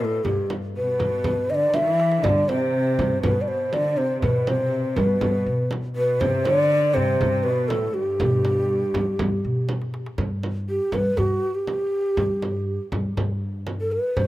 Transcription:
0.00 A2 A#4
0.04 A4
0.24 G2 G4, frame drum, darbuka dum
0.50 darbuka tek, frame drum
0.63 darbuka ka
0.76 B2 B4
0.99 darbuka dum, frame drum
1.12 darbuka ka
1.24 frame drum, darbuka dum
1.37 darbuka ka
1.50 D3 D#5
1.55 D5
1.74 E3 E5, darbuka tek, frame drum
1.88 darbuka ka
2.00 darbuka tek
2.12 darbuka ka
2.24 G2 D3 D5, frame drum, darbuka dum
2.49 C3 C5, darbuka tek, frame drum
2.99 G2, frame drum, darbuka dum
3.23 G2 B2 B4, frame drum, darbuka dum
3.41 D5
3.48 C5
3.73 D3 D5, darbuka tek, frame drum
3.97 C3 C5
4.22 B2 B4, frame drum, darbuka dum
4.47 C3 C5, darbuka tek, frame drum
4.96 B2 G3 B4, frame drum, darbuka dum
5.21 G3, frame drum, darbuka dum
5.35 darbuka ka
5.46 B2
5.71 darbuka tek, frame drum
5.96 B2 B4
6.21 G2 C3 C5, frame drum, darbuka dum
6.45 D3 D5, darbuka tek, frame drum
6.94 G2 C3 C5, darbuka dum
7.21 G2, frame drum, darbuka dum
7.34 darbuka ka
7.43 B2 B4
7.68 A2 A4, darbuka tek, frame drum
7.94 G2 G4
8.20 B2, frame drum, darbuka dum
8.45 darbuka tek, frame drum
8.83 darbuka ka
8.94 G3, darbuka dum, frame drum
9.07 darbuka ka
9.19 G3, darbuka dum, frame drum
9.32 darbuka ka
9.45 B2
9.69 darbuka tek, frame drum
9.82 darbuka ka
9.94 darbuka tek
10.06 darbuka ka
10.18 G2, frame drum, darbuka dum
10.43 frame drum
10.69 G4
10.81 darbuka ka
10.92 G3 B4, frame drum, darbuka dum
11.17 G2 F#4, frame drum, darbuka dum
11.55 G4
11.67 darbuka tek, frame drum
12.17 G2, frame drum, darbuka dum
12.42 darbuka tek, frame drum
12.80 darbuka ka
12.92 G3, frame drum, darbuka dum
13.05 darbuka ka
13.17 G2, frame drum, darbuka dum
13.30 darbuka ka
13.54 darbuka ka
13.67 darbuka tek, frame drum
13.81 A4
13.92 B4
14.17 G2 C5, frame drum, darbuka dum

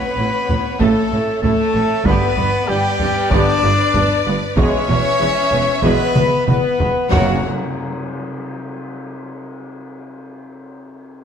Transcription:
Already playing: B3 B4 C#5 B5
0.17 A1 A2 E4
0.49 A1 A2 C#4, taiko low
0.80 A1 A2 C#3 A3 A4 A5, taiko
1.11 A1 A2 C#4
1.42 A1 A2 A3 E4 A4 A5, taiko low
1.74 A1 A2 C#4
2.04 G1 G2 D3 B3 G4 B4 D5 B5, taiko
2.37 G1 G2 B3, taiko low
2.68 G1 G2 G3 D4 G4 G5
2.99 G1 G2 B3, taiko low
3.31 G1 G2 D3 B3 D4 G4 D5 D6, taiko
3.63 G1 G2 B3
3.94 G1 G2 D4, taiko low
4.26 G1 G2 B3
4.56 E1 E2 B2 G#3 C#4 G#4 C#5 E5 C#6, taiko
4.89 E1 E2 B3, taiko low
5.20 E1 E2 E4
5.51 E1 E2 B3, taiko low
5.82 E1 E2 B2 G#3 B3 G#4 B4 B5, taiko
6.15 E1 E2 B3, taiko mid
6.47 E1 E2 B3 E4 B4 B5, taiko mid
6.79 E1 E2 B3, taiko low
7.10 F#1 F#2 C#3 F#3 A#3 F#4 A#4 C#5 F#5, taiko low, tam-tam

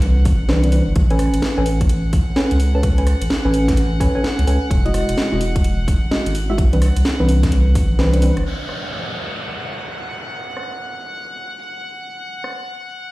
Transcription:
Already playing: C2 E3 C4 D4 B4 F#5
0.02 closed hi-hat
0.25 G1, kick, open hi-hat
0.40 C2
0.49 E3 C4 D4 B4, snare
0.64 E3 C4 D4 B4, closed hi-hat
0.72 E3 C4 D4 B4, open hi-hat
0.87 G1
0.96 A1 F#5, kick, closed hi-hat
1.10 C#4 A4 B4 G#5, closed hi-hat
1.19 cross-stick, open hi-hat
1.34 A1, closed hi-hat
1.42 snare
1.57 A1 C#4 A4 B4 G#5
1.66 open hi-hat
1.81 kick, closed hi-hat
1.89 closed hi-hat
2.13 kick, open hi-hat
2.36 C#4 A4 B4 G#5, snare
2.51 C#2, closed hi-hat
2.60 open hi-hat
2.75 C#4 A4 B4 A5
2.83 kick, closed hi-hat
2.98 C#4 A4 B4 G#5, closed hi-hat
3.07 cross-stick, open hi-hat
3.21 A1, closed hi-hat
3.30 snare
3.45 A1 C#4 A4 B4 G#5
3.54 open hi-hat
3.68 kick, snare, closed hi-hat
3.77 closed hi-hat
4.00 C#4 A4 B4 G#5, kick, open hi-hat
4.15 C#4 A4 B4 G#5
4.24 snare
4.39 C#2, closed hi-hat
4.47 C#2 C#4 A4 B4 G#5, open hi-hat
4.71 E1, kick, closed hi-hat
4.85 G#3 E4 F#4 D#5, closed hi-hat
4.94 cross-stick, open hi-hat
5.09 E1, closed hi-hat
5.18 snare
5.32 E1 G#3 E4 F#4 D#5
5.41 open hi-hat
5.56 kick, closed hi-hat
5.64 closed hi-hat
5.88 kick, open hi-hat
6.11 G#3 E4 F#4 D#5, snare
6.26 G#1, closed hi-hat
6.35 open hi-hat
6.49 G#3 E4 F#4 E5
6.58 C2, kick, closed hi-hat
6.73 E3 C4 D4 B4, closed hi-hat
6.82 cross-stick, open hi-hat
6.96 C2, closed hi-hat
7.05 snare
7.20 C2 E3 C4 D4 B4
7.29 open hi-hat
7.43 kick, snare, closed hi-hat
7.52 closed hi-hat
7.75 G1, kick, open hi-hat
7.90 C2
7.99 E3 C4 D4 B4, snare
8.13 E3 C4 D4 B4, closed hi-hat
8.22 E3 C4 D4 B4, open hi-hat
8.37 G1, cross-stick, closed hi-hat
8.46 F#5, downlifter
8.69 cross-stick
10.57 cross-stick
12.44 cross-stick

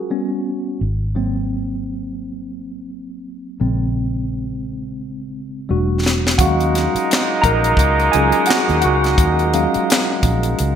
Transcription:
Already playing: F#3 G#3 C#4 F4 F#4 G#4
0.10 G3 B3 C#4
0.81 G#1
1.15 F#3 A#3 C4
3.60 A#1 C#3 G#3 C4
5.69 E1 G3 A3 D4 F#4
6.06 snare
6.27 snare
6.38 D#2 A#2 F#3 G#3 C#4 D#4 F#4 F5 F#5, kick, closed hi-hat
6.61 closed hi-hat
6.75 snare, closed hi-hat
6.95 muted fingered electric bass stroke, closed hi-hat
7.11 snare, clap, closed hi-hat
7.42 A#1 A#4 A#5, kick, closed hi-hat
7.64 closed hi-hat
7.77 C#2, kick, closed hi-hat
8.00 closed hi-hat
8.12 C#2 F#3 G#3 C#4 F4 G#4 G#5, closed hi-hat
8.32 closed hi-hat
8.46 F#5, closed hi-hat
8.50 F#4, snare, clap
8.69 D#2, closed hi-hat
8.81 C#2 F#4 F#5, closed hi-hat
9.04 snare, closed hi-hat
9.18 D#2, kick, closed hi-hat
9.39 closed hi-hat
9.53 F#3 G#3 C#4 F5, closed hi-hat
9.74 muted fingered electric bass stroke, closed hi-hat
9.90 snare, clap, closed hi-hat
10.23 A#1, kick, closed hi-hat
10.43 closed hi-hat
10.59 C#2, closed hi-hat

